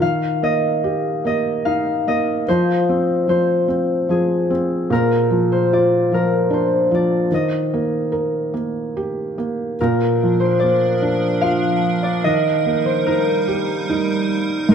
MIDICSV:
0, 0, Header, 1, 4, 480
1, 0, Start_track
1, 0, Key_signature, -3, "major"
1, 0, Tempo, 817439
1, 9, Time_signature, 3, 2, 24, 8
1, 2409, Tempo, 802139
1, 4809, Tempo, 833333
1, 6249, Tempo, 814111
1, 8687, End_track
2, 0, Start_track
2, 0, Title_t, "Harp"
2, 0, Program_c, 0, 46
2, 0, Note_on_c, 0, 70, 79
2, 11, Note_on_c, 0, 77, 93
2, 256, Note_on_c, 0, 75, 87
2, 741, Note_off_c, 0, 75, 0
2, 743, Note_on_c, 0, 75, 85
2, 772, Note_off_c, 0, 70, 0
2, 968, Note_off_c, 0, 77, 0
2, 970, Note_on_c, 0, 77, 75
2, 1219, Note_off_c, 0, 75, 0
2, 1221, Note_on_c, 0, 75, 87
2, 1459, Note_on_c, 0, 72, 91
2, 1930, Note_off_c, 0, 72, 0
2, 1933, Note_on_c, 0, 72, 83
2, 1948, Note_off_c, 0, 77, 0
2, 2268, Note_off_c, 0, 75, 0
2, 2410, Note_on_c, 0, 68, 72
2, 2900, Note_on_c, 0, 70, 84
2, 3108, Note_off_c, 0, 72, 0
2, 3258, Note_on_c, 0, 72, 75
2, 3385, Note_on_c, 0, 74, 74
2, 3626, Note_off_c, 0, 70, 0
2, 3629, Note_on_c, 0, 70, 69
2, 3770, Note_off_c, 0, 68, 0
2, 3862, Note_off_c, 0, 72, 0
2, 3864, Note_on_c, 0, 72, 69
2, 4108, Note_off_c, 0, 74, 0
2, 4110, Note_on_c, 0, 74, 74
2, 4347, Note_on_c, 0, 75, 76
2, 4383, Note_off_c, 0, 74, 0
2, 4895, Note_off_c, 0, 70, 0
2, 5040, Note_off_c, 0, 72, 0
2, 5518, Note_off_c, 0, 75, 0
2, 5784, Note_on_c, 0, 70, 76
2, 6126, Note_on_c, 0, 72, 70
2, 6239, Note_on_c, 0, 74, 81
2, 6721, Note_on_c, 0, 77, 93
2, 7024, Note_off_c, 0, 70, 0
2, 7082, Note_off_c, 0, 74, 0
2, 7084, Note_on_c, 0, 74, 83
2, 7209, Note_on_c, 0, 75, 95
2, 7244, Note_off_c, 0, 74, 0
2, 7290, Note_off_c, 0, 72, 0
2, 7570, Note_on_c, 0, 72, 76
2, 7605, Note_off_c, 0, 72, 0
2, 7693, Note_on_c, 0, 70, 72
2, 7702, Note_off_c, 0, 77, 0
2, 8261, Note_off_c, 0, 75, 0
2, 8665, Note_off_c, 0, 70, 0
2, 8667, Note_on_c, 0, 70, 82
2, 8687, Note_off_c, 0, 70, 0
2, 8687, End_track
3, 0, Start_track
3, 0, Title_t, "Ambient pad"
3, 0, Program_c, 1, 92
3, 5779, Note_on_c, 1, 62, 64
3, 5781, Note_on_c, 1, 53, 65
3, 5783, Note_on_c, 1, 70, 67
3, 7200, Note_off_c, 1, 62, 0
3, 7202, Note_off_c, 1, 53, 0
3, 7216, Note_on_c, 1, 63, 60
3, 7217, Note_on_c, 1, 55, 65
3, 8638, Note_off_c, 1, 63, 0
3, 8639, Note_off_c, 1, 55, 0
3, 8687, Note_off_c, 1, 70, 0
3, 8687, End_track
4, 0, Start_track
4, 0, Title_t, "Felt piano"
4, 0, Program_c, 2, 0
4, 0, Control_c, 2, 64, 127
4, 0, Note_on_c, 2, 51, 59
4, 17, Control_c, 2, 64, 0
4, 119, Control_c, 2, 64, 127
4, 249, Note_on_c, 2, 58, 43
4, 493, Note_on_c, 2, 67, 48
4, 725, Note_off_c, 2, 58, 0
4, 733, Note_on_c, 2, 58, 45
4, 974, Note_on_c, 2, 63, 51
4, 1209, Note_off_c, 2, 58, 0
4, 1218, Note_on_c, 2, 58, 46
4, 1428, Note_off_c, 2, 51, 0
4, 1432, Note_off_c, 2, 67, 0
4, 1440, Note_off_c, 2, 63, 0
4, 1449, Note_off_c, 2, 58, 0
4, 1462, Control_c, 2, 64, 0
4, 1463, Note_on_c, 2, 53, 59
4, 1574, Control_c, 2, 64, 127
4, 1699, Note_on_c, 2, 60, 45
4, 1916, Note_off_c, 2, 53, 0
4, 1925, Note_on_c, 2, 53, 46
4, 2153, Note_off_c, 2, 60, 0
4, 2162, Note_on_c, 2, 60, 47
4, 2393, Note_off_c, 2, 53, 0
4, 2402, Note_on_c, 2, 53, 50
4, 2640, Note_off_c, 2, 60, 0
4, 2649, Note_on_c, 2, 60, 50
4, 2873, Note_off_c, 2, 53, 0
4, 2883, Note_off_c, 2, 60, 0
4, 2888, Note_on_c, 2, 46, 68
4, 2900, Control_c, 2, 64, 0
4, 3002, Control_c, 2, 64, 127
4, 3129, Note_on_c, 2, 53, 50
4, 3382, Note_on_c, 2, 65, 48
4, 3606, Note_off_c, 2, 53, 0
4, 3615, Note_on_c, 2, 53, 44
4, 3846, Note_on_c, 2, 62, 51
4, 4081, Note_off_c, 2, 53, 0
4, 4090, Note_on_c, 2, 53, 48
4, 4300, Note_off_c, 2, 46, 0
4, 4308, Note_off_c, 2, 65, 0
4, 4311, Note_off_c, 2, 62, 0
4, 4321, Note_off_c, 2, 53, 0
4, 4332, Note_on_c, 2, 51, 58
4, 4334, Control_c, 2, 64, 0
4, 4420, Control_c, 2, 64, 127
4, 4583, Note_on_c, 2, 58, 49
4, 4813, Note_on_c, 2, 70, 45
4, 5044, Note_off_c, 2, 58, 0
4, 5053, Note_on_c, 2, 58, 41
4, 5301, Note_on_c, 2, 67, 48
4, 5531, Note_off_c, 2, 58, 0
4, 5539, Note_on_c, 2, 58, 46
4, 5752, Note_off_c, 2, 70, 0
4, 5753, Note_off_c, 2, 51, 0
4, 5765, Note_off_c, 2, 67, 0
4, 5770, Note_off_c, 2, 58, 0
4, 5781, Control_c, 2, 64, 0
4, 5788, Note_on_c, 2, 46, 65
4, 5885, Control_c, 2, 64, 127
4, 6030, Note_on_c, 2, 53, 47
4, 6257, Note_on_c, 2, 58, 43
4, 6491, Note_on_c, 2, 62, 46
4, 6733, Note_on_c, 2, 65, 54
4, 6955, Note_off_c, 2, 53, 0
4, 7191, Note_off_c, 2, 62, 0
4, 7193, Note_off_c, 2, 58, 0
4, 7196, Note_off_c, 2, 46, 0
4, 7199, Note_off_c, 2, 65, 0
4, 7216, Note_on_c, 2, 51, 64
4, 7219, Control_c, 2, 64, 0
4, 7335, Control_c, 2, 64, 127
4, 7455, Note_on_c, 2, 58, 47
4, 7699, Note_on_c, 2, 63, 45
4, 7938, Note_on_c, 2, 67, 49
4, 8176, Note_off_c, 2, 63, 0
4, 8185, Note_on_c, 2, 63, 57
4, 8392, Note_off_c, 2, 58, 0
4, 8629, Note_off_c, 2, 51, 0
4, 8631, Note_off_c, 2, 67, 0
4, 8640, Note_off_c, 2, 63, 0
4, 8651, Note_on_c, 2, 44, 67
4, 8658, Control_c, 2, 64, 0
4, 8687, Note_off_c, 2, 44, 0
4, 8687, End_track
0, 0, End_of_file